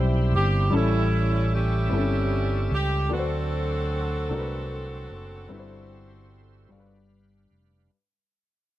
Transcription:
0.00 0.34 B1 medium
0.00 0.74 C3 medium
0.00 0.69 G3 medium
0.00 0.70 G3 medium
0.00 0.69 C4 soft
0.00 0.74 C4 medium
0.00 0.29 E4 soft
0.00 0.69 E4 medium
0.00 0.73 E4 medium
0.00 0.69 G4 medium
0.00 0.74 B4 medium
0.00 0.61 C5 medium
0.32 0.69 G1 medium
0.32 0.71 G4 medium
0.70 1.88 A1 medium
0.70 1.88 A2 medium
0.70 1.78 G3 medium
0.70 3.08 G3 medium
0.70 1.79 C#4 medium
0.70 3.08 C#4 medium
0.70 3.07 E4 soft
0.70 1.79 E4 medium
0.70 3.07 A4 medium
0.70 1.80 A4 medium
0.74 1.89 G3 medium
0.74 1.53 C#4 soft
0.74 1.49 E4 medium
1.54 2.69 C#4 medium
1.54 2.69 E4 medium
1.54 2.72 G4 medium
1.90 2.68 G1 medium
1.90 2.98 G3 medium
1.90 1.98 C4 soft
1.90 2.99 E4 medium
1.94 3.02 C#4 medium
1.94 3.00 A4 medium
2.71 3.08 C#2 medium
2.71 3.10 G4 medium
3.09 4.27 D2 medium
3.09 4.27 D3 medium
3.09 3.18 E3 soft
3.09 4.17 A3 medium
3.09 5.47 C4 medium
3.09 4.18 D4 medium
3.09 5.47 D4 medium
3.09 4.18 F#4 medium
3.09 5.47 A4 medium
3.09 3.19 B4 medium
3.13 7.08 C4 medium
3.13 7.08 F#4 medium
3.13 7.09 A4 medium
3.18 5.50 F#3 medium
3.18 4.22 C5 medium
4.29 5.06 C2 medium
4.29 5.37 A3 medium
4.29 5.38 D4 medium
4.29 5.38 F#4 medium
4.29 4.38 A#4 medium
4.39 5.42 B4 medium
5.10 5.48 F#1 medium
5.49 6.67 G1 medium
5.49 6.67 G2 medium
5.49 6.57 G3 medium
5.49 6.70 G3 medium
5.49 6.58 C4 medium
5.49 6.72 C4 medium
5.49 6.58 E4 medium
5.49 6.72 E4 medium
5.49 5.58 B4 medium
5.49 6.71 C5 medium
5.59 6.62 C5 medium
6.69 7.47 G1 medium
6.69 7.87 G2 medium
6.69 7.77 G3 medium
6.69 7.91 G3 medium
6.69 7.78 D4 medium
6.69 7.91 D4 medium
6.69 7.91 B4 medium
6.69 7.91 F5 soft
6.69 7.79 F5 medium
6.73 6.79 A4 medium
6.80 7.82 B4 medium
7.51 7.88 F1 medium

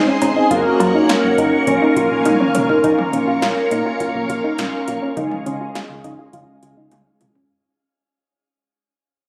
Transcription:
0.00 0.47 G#3 medium
0.00 0.47 C4 medium
0.00 0.47 D#4 medium
0.00 0.47 G#4 medium
0.00 0.48 C5 medium
0.00 0.47 D#5 medium
0.00 0.48 C6 medium
0.07 0.15 C#4 medium
0.22 0.33 G#1 loud
0.22 0.29 C#4 medium
0.22 closed hi-hat medium
0.22 cowbell medium
0.36 0.44 D#4 medium
0.51 0.62 F#1 loud
0.51 1.65 A#3 medium
0.51 1.65 C#4 medium
0.51 0.66 F4 loud
0.51 1.65 F#4 medium
0.51 2.82 A#4 medium
0.51 1.65 A#4 medium
0.51 1.66 C#5 medium
0.51 1.66 F#5 medium
0.51 2.82 C#6 medium
0.51 kick loud
0.51 closed hi-hat medium
0.80 0.91 F#2 loud
0.80 0.88 F4 medium
0.80 closed hi-hat medium
0.80 cowbell medium
0.95 1.02 D#4 medium
1.09 1.24 F4 medium
1.09 snare loud
1.09 closed hi-hat medium
1.24 1.35 F#1 medium
1.38 1.50 F#1 loud
1.38 1.54 D#4 medium
1.38 kick medium
1.38 closed hi-hat medium
1.67 1.79 A#1 loud
1.67 2.82 A#3 medium
1.67 1.75 C#4 medium
1.67 2.82 C#4 medium
1.67 2.82 F4 medium
1.67 2.82 A#4 medium
1.67 2.83 F5 medium
1.67 2.83 G#5 medium
1.67 kick medium
1.67 closed hi-hat medium
1.82 1.90 D#4 medium
1.96 2.08 A#1 loud
1.96 2.12 F4 medium
1.96 kick medium
1.96 closed hi-hat medium
2.11 2.22 A#1 loud
2.25 2.37 A#1 loud
2.25 2.33 D#4 medium
2.25 closed hi-hat medium
2.25 high tom medium
2.40 2.48 C#4 medium
2.40 mid tom medium
2.55 2.66 G#1 medium
2.55 2.62 C#4 medium
2.55 closed hi-hat medium
2.55 mid tom loud
2.69 2.77 D#4 medium
2.69 floor tom loud
2.84 2.95 A#1 loud
2.84 5.13 A#3 medium
2.84 5.13 C#4 medium
2.84 2.99 D#4 medium
2.84 5.13 F4 medium
2.84 5.15 A#4 medium
2.84 5.13 A#4 medium
2.84 5.15 C#5 medium
2.84 5.15 F5 medium
2.84 7.46 C#6 medium
2.84 kick loud
2.84 closed hi-hat medium
2.98 mid tom medium
3.13 3.24 A#1 medium
3.13 3.21 C#4 medium
3.13 closed hi-hat medium
3.28 3.39 A#1 medium
3.28 3.35 F4 medium
3.42 3.53 A#1 loud
3.42 3.58 F4 medium
3.42 snare loud
3.42 closed hi-hat medium
3.71 3.82 A#2 loud
3.71 3.79 D#4 medium
3.71 closed hi-hat medium
3.86 3.94 F4 medium
4.00 4.16 F4 medium
4.00 kick medium
4.00 closed hi-hat medium
4.15 4.26 A#1 loud
4.29 4.41 A#1 medium
4.29 4.37 F4 medium
4.29 kick medium
4.29 closed hi-hat medium
4.44 4.52 D#4 medium
4.58 4.70 A#1 medium
4.58 4.74 F4 medium
4.58 snare loud
4.58 closed hi-hat medium
4.88 4.99 A#1 medium
4.88 4.96 F4 medium
4.88 closed hi-hat medium
5.02 5.10 C#4 medium
5.17 5.28 C#2 loud
5.17 7.46 G#3 medium
5.17 7.46 C#4 medium
5.17 5.32 D#4 loud
5.17 7.46 F4 medium
5.17 7.48 G#4 medium
5.17 7.46 G#4 medium
5.17 7.48 D#5 medium
5.17 7.48 F5 medium
5.17 kick loud
5.17 closed hi-hat medium
5.32 mid tom medium
5.46 5.57 C#3 medium
5.46 5.54 C#4 medium
5.46 closed hi-hat medium
5.61 5.68 F4 medium
5.75 5.91 F4 medium
5.75 snare loud
5.75 closed hi-hat medium
5.90 6.01 C#2 loud
6.04 6.16 C#2 medium
6.04 6.12 D#4 medium
6.04 kick medium
6.04 closed hi-hat medium
6.19 6.27 F4 medium
6.33 6.45 C#2 loud
6.33 6.49 F4 medium
6.33 kick medium
6.33 closed hi-hat medium
6.63 6.74 C#2 loud
6.63 6.70 F4 medium
6.63 closed hi-hat medium
6.77 6.88 C#2 medium
6.77 6.85 D#4 medium
6.91 7.03 C#2 loud
6.91 7.07 F4 medium
6.91 closed hi-hat medium
6.91 high tom medium
7.21 7.32 C2 medium
7.21 7.28 F4 medium
7.21 closed hi-hat medium
7.21 mid tom medium
7.35 7.43 C#4 medium
7.35 floor tom medium

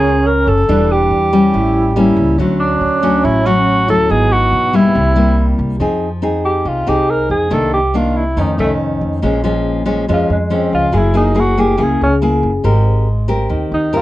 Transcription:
0.00 0.43 C#2 loud
0.00 0.66 C#3 medium
0.00 0.66 C#4 loud
0.00 0.65 F4 medium
0.00 0.28 G#4 loud
0.00 0.66 A#4 medium
0.26 0.50 A#4 loud
0.47 0.67 F#1 medium
0.47 0.93 A4 medium
0.66 1.08 E1 medium
0.66 1.52 E3 medium
0.66 1.29 G3 medium
0.66 1.22 D4 medium
0.66 1.29 D4 medium
0.92 2.19 G4 medium
1.11 1.50 E2 medium
1.33 1.93 G3 medium
1.33 1.93 C#4 medium
1.52 2.14 A1 medium
1.52 2.37 A2 medium
1.52 1.93 E4 medium
1.96 2.37 G3 medium
1.96 2.37 A#3 medium
1.96 2.38 C#4 medium
1.96 2.40 E4 medium
2.16 2.37 C#2 medium
2.38 2.78 D2 medium
2.38 3.22 D3 medium
2.38 3.00 F#3 medium
2.38 3.00 A3 medium
2.38 4.11 C#4 loud
2.60 3.26 D4 medium
2.81 3.21 D2 medium
3.03 3.42 F#3 medium
3.03 3.42 A3 medium
3.03 3.42 C#4 medium
3.25 3.85 A1 loud
3.25 4.08 A2 medium
3.25 3.48 E4 medium
3.46 3.85 F#3 medium
3.46 3.85 A3 medium
3.46 3.86 C#4 medium
3.46 3.89 F#4 loud
3.88 4.08 D2 medium
3.88 4.70 F#3 medium
3.88 4.71 E4 medium
3.88 4.12 A4 loud
4.09 4.50 G#1 medium
4.09 4.93 G#2 medium
4.09 4.97 B3 medium
4.09 4.34 G#4 loud
4.32 4.77 F#4 loud
4.53 4.92 B1 medium
4.73 5.13 G3 medium
4.73 5.13 A#3 medium
4.73 5.13 E4 medium
4.73 5.60 E4 medium
4.95 5.55 C2 medium
4.95 5.78 C3 medium
4.95 5.60 C4 medium
5.16 5.77 G3 medium
5.16 5.77 A#3 medium
5.16 5.77 E4 medium
5.59 5.79 C2 medium
5.80 6.62 F2 medium
5.80 6.64 F3 soft
5.80 6.08 C4 soft
5.80 6.08 D#4 medium
5.80 6.08 G#4 medium
6.22 6.84 C4 medium
6.22 6.84 D#4 medium
6.22 6.84 G#4 medium
6.46 6.70 G4 medium
6.65 6.86 C2 medium
6.65 7.49 C3 soft
6.65 6.90 F4 medium
6.87 7.27 C2 medium
6.87 7.48 C4 medium
6.87 7.48 D#4 medium
6.87 7.12 G4 medium
6.87 7.48 G#4 medium
7.11 7.31 A#4 medium
7.30 7.50 F2 medium
7.30 7.55 G#4 medium
7.51 8.33 C2 medium
7.51 8.34 C3 medium
7.51 7.79 D#3 medium
7.51 7.79 A#3 medium
7.51 7.79 D4 medium
7.51 7.73 A4 medium
7.74 7.98 G4 medium
7.94 8.23 D#3 medium
7.94 8.23 A#3 medium
7.94 8.23 D4 medium
7.94 8.18 F4 medium
8.17 8.43 E4 medium
8.37 8.57 F2 medium
8.37 9.21 F2 medium
8.37 8.55 D#3 medium
8.37 8.55 A3 medium
8.37 8.56 C#4 medium
8.41 8.59 D#4 medium
8.58 8.98 C2 medium
8.58 9.19 D#3 medium
8.58 9.19 A3 medium
8.58 8.72 A3 medium
8.58 9.19 C#4 medium
9.01 9.21 F2 medium
9.22 10.04 A#1 medium
9.22 10.06 A#2 medium
9.22 9.40 F3 medium
9.22 9.41 G#3 medium
9.22 9.41 C#4 medium
9.44 9.83 F3 medium
9.44 9.83 G#3 medium
9.44 9.83 C#4 medium
9.85 10.04 F3 medium
9.85 10.04 G#3 medium
9.85 10.04 C#4 medium
10.08 10.92 F2 medium
10.08 10.28 F2 medium
10.08 10.36 F3 medium
10.08 10.36 G#3 medium
10.08 10.36 C#4 medium
10.13 10.30 F4 medium
10.29 10.69 F2 medium
10.29 10.56 G#3 medium
10.50 10.90 F3 medium
10.50 10.90 G#3 medium
10.50 10.74 C4 medium
10.50 10.90 C#4 medium
10.73 10.92 C#2 medium
10.73 10.99 F4 medium
10.92 11.75 F#1 medium
10.92 11.76 F#3 medium
10.92 11.11 A#3 medium
10.92 11.11 E4 medium
10.92 11.11 G#4 medium
10.97 11.17 E4 medium
11.14 11.32 A#3 medium
11.14 11.41 D#4 medium
11.14 11.33 E4 medium
11.14 11.33 G#4 medium
11.35 11.53 A#3 medium
11.35 11.54 E4 soft
11.35 11.54 G#4 medium
11.40 11.62 F#4 medium
11.58 11.76 A#3 medium
11.58 11.76 E4 medium
11.58 11.85 G4 medium
11.58 11.76 G#4 medium
11.78 11.99 C#2 medium
11.78 12.62 C#3 medium
11.78 12.06 A#3 medium
11.78 12.06 E4 medium
11.78 12.06 G#4 medium
11.84 12.03 G#4 medium
12.01 12.41 C#2 medium
12.01 12.15 C#4 medium
12.22 12.51 A#3 medium
12.22 12.51 E4 medium
12.22 12.51 G#4 medium
12.43 12.63 F#1 medium
12.64 13.46 G#1 medium
12.64 13.48 G#3 medium
12.64 13.07 C4 medium
12.64 13.07 G4 medium
12.64 13.07 A#4 medium
13.28 13.89 C4 medium
13.28 13.89 G4 medium
13.28 13.90 A#4 medium
13.50 13.70 D#2 medium
13.50 14.02 D#3 medium
13.72 14.02 D#2 medium
13.72 13.98 D#4 medium
13.93 14.02 C4 medium
13.93 14.02 G4 medium
13.93 14.02 A#4 medium
13.97 14.02 F4 medium

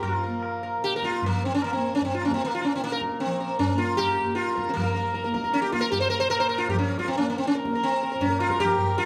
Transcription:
0.00 0.77 A#2 medium
0.00 1.26 F3 medium
0.00 0.28 A#3 medium
0.00 0.59 F4 medium
0.00 tabla na loud
0.00 tabla ge medium
0.23 0.42 A#4 soft
0.28 1.77 A#3 medium
0.43 tabla na medium
0.63 0.82 A#4 soft
0.63 tabla na medium
0.78 2.76 A#2 medium
0.82 0.93 G4 medium
0.82 tabla te medium
0.93 1.05 A#4 medium
0.93 tabla te medium
1.02 1.24 F4 medium
1.02 tabla ke medium
1.12 tabla te medium
1.22 1.45 A#3 medium
1.22 tabla tin medium
1.22 tabla ge medium
1.27 3.25 F3 medium
1.45 1.54 C4 medium
1.55 1.64 C#4 medium
1.62 1.72 A#3 medium
1.62 tabla na medium
1.73 2.28 A#3 medium
1.73 1.93 C4 medium
1.95 2.03 C#4 medium
2.01 2.13 C4 medium
2.01 tabla tin medium
2.01 tabla ge medium
2.14 2.23 F4 medium
2.22 2.33 C#4 medium
2.22 tabla na medium
2.28 3.74 A#3 medium
2.28 tabla ke medium
2.34 2.43 C4 medium
2.41 tabla tin medium
2.45 2.53 A#3 medium
2.55 2.60 F4 medium
2.61 2.73 C#4 medium
2.61 2.63 F4 medium
2.61 tabla na medium
2.75 6.21 A#2 medium
2.75 2.83 C4 medium
2.81 2.92 A#3 medium
2.81 tabla te medium
2.91 3.00 A#4 medium
2.91 tabla te medium
3.01 tabla ke medium
3.12 tabla te medium
3.20 3.59 C4 medium
3.20 tabla tin medium
3.25 4.75 F3 medium
3.40 3.58 A#4 soft
3.59 3.79 C#4 medium
3.59 3.77 A#4 soft
3.59 tabla tin medium
3.59 tabla ge medium
3.74 4.25 A#3 medium
3.74 3.98 F4 medium
3.78 3.97 A#4 soft
3.97 4.35 G4 loud
3.97 4.16 A#4 soft
3.97 tabla na medium
3.97 tabla ge medium
4.19 tabla ge medium
4.25 5.25 A#3 medium
4.35 4.70 F4 medium
4.35 4.54 A#4 soft
4.35 tabla te medium
4.48 tabla te medium
4.55 4.74 A#4 soft
4.55 tabla ke medium
4.67 4.73 C4 soft
4.67 tabla te medium
4.74 6.70 F3 medium
4.74 5.29 A#3 medium
4.74 tabla na loud
4.74 tabla ge loud
4.84 4.94 A#4 soft
4.95 5.13 A#4 soft
5.14 5.23 A#4 soft
5.14 tabla te medium
5.24 5.74 A#3 medium
5.24 5.33 A#4 soft
5.24 tabla te medium
5.34 5.43 A#4 soft
5.34 tabla ke medium
5.43 5.62 A#4 soft
5.43 tabla te medium
5.53 5.61 C#4 medium
5.53 tabla te medium
5.62 5.72 G4 loud
5.62 tabla te medium
5.72 7.19 A#3 medium
5.72 5.82 F4 medium
5.72 tabla ke medium
5.81 5.90 A#4 loud
5.81 tabla te medium
5.92 6.00 G4 medium
5.92 tabla tin medium
5.92 tabla ge medium
6.00 6.09 C5 loud
6.10 6.19 A#4 loud
6.10 tabla na medium
6.20 8.14 A#2 medium
6.20 6.30 C5 loud
6.30 6.39 A#4 loud
6.30 tabla na medium
6.40 6.48 C5 medium
6.49 6.59 A#4 medium
6.58 6.68 F4 medium
6.69 8.62 F3 medium
6.69 6.78 G4 medium
6.69 tabla tin medium
6.69 tabla ge medium
6.79 6.98 C#4 medium
6.88 tabla na medium
6.98 7.08 F4 medium
6.98 tabla ke medium
7.08 7.17 C4 medium
7.08 tabla tin medium
7.17 7.67 A#3 medium
7.17 7.27 C#4 medium
7.30 7.37 A#3 medium
7.38 7.47 C4 medium
7.46 7.55 C#4 medium
7.46 tabla te medium
7.55 7.73 A#4 soft
7.55 tabla te medium
7.65 9.05 A#3 medium
7.65 tabla ke medium
7.74 7.92 A#4 soft
7.74 tabla te medium
7.83 8.23 C4 medium
7.83 tabla tin medium
8.02 8.10 A#4 soft
8.02 tabla na medium
8.12 9.05 A#2 medium
8.12 8.29 A#4 soft
8.21 8.40 C#4 medium
8.21 tabla tin medium
8.21 tabla ge medium
8.30 8.48 A#4 soft
8.40 8.60 F4 loud
8.40 tabla na medium
8.50 8.67 A#4 soft
8.50 tabla ke medium
8.59 9.05 F3 medium
8.59 8.97 G4 loud
8.59 tabla na medium
8.59 tabla ge medium
8.68 8.77 A#4 soft
8.78 8.86 A#4 soft
8.78 tabla ge medium
8.87 9.05 A#4 soft
8.97 9.05 F4 medium
8.97 tabla na medium
8.97 tabla ge medium

